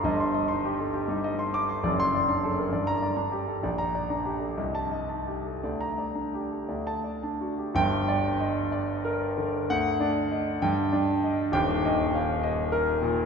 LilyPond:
<<
  \new Staff \with { instrumentName = "Grand piano" } { \time 6/8 \key g \minor \tempo 4. = 65 << { r2 r8 d'''16 r16 | r16 c'''8 r4 bes''8 r8. | r16 bes''8 r4 a''8 r8. | r16 bes''8 r4 a''8 r8. |
g''8. r2 r16 | fis''8. r8. g''8. r8. | g''8. r2 r16 | } \\ { ees''16 c'''16 ees''16 c'''16 g'16 a'16 g'16 g16 ees''16 c'''8 c'''16 | d''8 d''16 c'''16 a'16 bes'16 d''8 d''16 bes''16 g'16 a'16 | d''8 d''16 bes''16 g'16 a'16 ees''8 ees''16 a''16 g'16 a'16 | d''8 d''16 bes''16 g'16 a'16 d''8 d''16 a''16 fis'16 g'16 |
r8 d''8 ees''8 d''8 bes'8 d8 | r8 d''8 ees''8 r8 d''8 ees''8 | r8 ees''8 f''8 ees''8 bes'8 bes,8 | } >> }
  \new Staff \with { instrumentName = "Grand piano" } { \clef bass \time 6/8 \key g \minor <g,, g,>8. ees'8 r8 ees'8 r8. | <fis,, fis,>8. d'8 r16 g,8. d'8 r16 | bes,,8. d'8 r16 c,8. ees'8 r16 | d,8. d'8 r16 d,8. d'8 r16 |
<g,, g,>2. | d,8 d'8. r16 g,8 d'8. r16 | <ees,, ees,>2. | }
>>